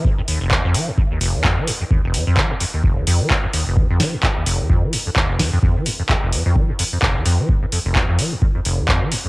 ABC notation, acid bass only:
X:1
M:4/4
L:1/16
Q:"Swing 16ths" 1/4=129
K:Ebdor
V:1 name="Acid bass" clef=bass
F,, F,, E,, F,,, F,, F,, F, F,, F,, E,, F,,, F,, F,, F, F,, F,, | E,, F,,, F,, F,, F, F,, F,, E,, F,,, F,, F,, F, F,, F,, E,, F,,, | F,, F,, F, F,, F,, E,, F,,, F,, F,, F, F,, F,, E,, F,,, F,, F,, | F,, F, F,, F,, F,, F,,, F,, F,, F, F,, F,, F,, F,,, F,, F,, F, |
F,, F,, F,, F,,, F,, F,, F, F,, F,, F,, F,,, F,, F,, F, F,, F,, |]